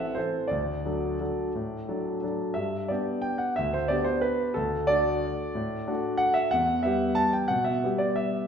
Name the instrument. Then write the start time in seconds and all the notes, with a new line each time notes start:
grand piano
Already playing: A1 E3 C4 A4 E5 F#5
0.15 E3 C4 A4 C5
0.48 D2 D5
0.85 F#3 D4 A4
1.20 F#3 D4 A4
1.55 A2
1.88 F#3 D4 A4
2.23 F#3 D4 A4
2.54 G2 E5
2.88 B3 D4 G4 D5
3.22 G5
3.38 F#5
3.56 D2 E5
3.73 C5
3.88 B3 D4 G4 D5
4.04 C5
4.21 B4
4.54 D2 A4
4.87 A3 D4 F#4 D5
5.55 A2
5.88 A3 D4 F#4
6.17 F#5
6.34 E5
6.51 E2 F#5
6.83 G3 B3 G4 E5
7.15 A5
7.33 G5
7.48 B2 F#5
7.64 E5
7.84 G3 B3 G4
7.98 D5
8.16 E5